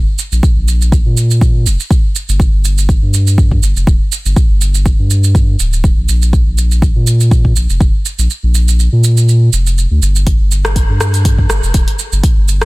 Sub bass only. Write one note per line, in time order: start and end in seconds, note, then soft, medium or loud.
0.32 0.41 A#1 medium
0.56 1.02 A#1 medium
1.06 1.67 A#2 medium
1.66 1.77 F1 medium
2.29 2.48 G1 loud
2.53 2.98 G1 loud
3.02 3.59 G2 loud
3.63 3.74 G1 medium
3.76 3.85 F1 medium
3.87 3.98 D1 medium
4.25 4.34 G1 medium
4.50 4.95 G1 loud
4.99 5.56 G2 loud
5.59 5.94 D1 medium
5.97 6.06 A#1 medium
6.08 6.43 A#1 loud
6.46 6.92 A#1 medium
6.96 7.53 A#2 loud
7.56 7.67 A#1 medium
7.70 7.79 F1 medium
7.80 7.92 F1 medium
8.18 8.28 A#1 medium
8.43 8.89 A#1 loud
8.92 9.50 A#2 loud
9.53 9.87 F1 medium
9.91 10.00 D2 medium
10.02 10.36 G1 loud
10.40 10.85 G1 loud
10.89 11.46 G2 loud
11.50 11.61 G1 medium
11.63 11.72 F1 medium
11.74 11.85 D1 medium
12.12 12.21 G1 medium
12.37 12.65 G1 loud